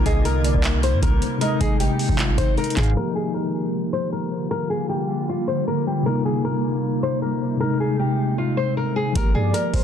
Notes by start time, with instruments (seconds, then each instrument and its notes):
Already playing: tine electric piano C3 A#3 D#4, ambient pad C3 G3 A#3 D#4
0.06 808-style bass C2, nylon-string guitar G#4, soft synth lead D#5, kick, closed hi-hat
0.25 nylon-string guitar A#4, closed hi-hat
0.44 soft synth lead D5, closed hi-hat
0.54 808-style bass C2, kick
0.64 clap, closed hi-hat
0.83 nylon-string guitar C5, closed hi-hat
0.93 808-style bass G2
1.03 808-style bass C2, nylon-string guitar A#4, kick, closed hi-hat
1.22 closed hi-hat
1.38 tine electric piano C3 G#3, ambient pad D#3 G#3, nylon-string guitar A#4, soft synth lead D#5, closed hi-hat
1.45 tine electric piano D#4
1.61 808-style bass G#1, nylon-string guitar G#4, kick, closed hi-hat
1.80 nylon-string guitar G4, closed hi-hat
1.99 open hi-hat
2.09 808-style bass G#1, kick
2.19 nylon-string guitar F4, clap, closed hi-hat
2.38 808-style bass G#1, nylon-string guitar C5, kick, closed hi-hat
2.57 nylon-string guitar A#4, closed hi-hat
2.64 closed hi-hat
2.70 closed hi-hat
2.77 808-style bass G#2, nylon-string guitar G#4, soft synth lead F5, kick, clap, closed hi-hat
2.83 closed hi-hat
2.90 tine electric piano F3, closed hi-hat
2.96 ambient pad D3 G3 A#3 F4, tine electric piano A#3 G4, nylon-string guitar A#4
3.15 nylon-string guitar G#4
3.34 nylon-string guitar A#4
3.93 nylon-string guitar C5
4.12 nylon-string guitar A#4
4.51 nylon-string guitar A#4
4.70 nylon-string guitar G#4
4.89 nylon-string guitar G4
5.29 nylon-string guitar F4
5.48 nylon-string guitar C5
5.68 nylon-string guitar A#4
5.87 nylon-string guitar G4
6.03 tine electric piano C3 A#3, ambient pad C3 D#4, nylon-string guitar A#4
6.09 tine electric piano D#4
6.25 nylon-string guitar G#4
6.45 nylon-string guitar A#4
7.03 nylon-string guitar C5
7.22 nylon-string guitar A#4
7.57 tine electric piano C3 G#3, ambient pad D#3 G#3, nylon-string guitar A#4
7.63 tine electric piano D#4
7.80 nylon-string guitar G#4
7.99 nylon-string guitar G4
8.38 nylon-string guitar F4
8.57 nylon-string guitar C5
8.77 nylon-string guitar A#4
8.96 nylon-string guitar G#4
9.13 808-style bass G1, tine electric piano F3 A#3, nylon-string guitar A#4, kick, closed hi-hat
9.19 tine electric piano G4
9.35 808-style bass G2, nylon-string guitar G#4, soft synth lead D5
9.54 nylon-string guitar A#4, closed hi-hat
9.74 808-style bass G1, soft synth lead C5, kick, open hi-hat